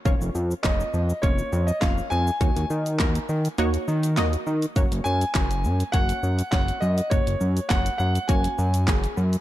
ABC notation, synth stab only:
X:1
M:4/4
L:1/8
Q:1/4=102
K:F#
V:1 name="Synth stab"
[A,CEc] z [A,CEc] z [A,CEc] z [A,CEc] z | [A,DFc] z [A,DFA] z [A,DFc] z [A,DFd] z | [A,CFc] z [A,CFc] z [A,CFc] z [A,CFc] z | [A,CFc] z [A,CFc] z [A,CFc] z [A,CFG] z |]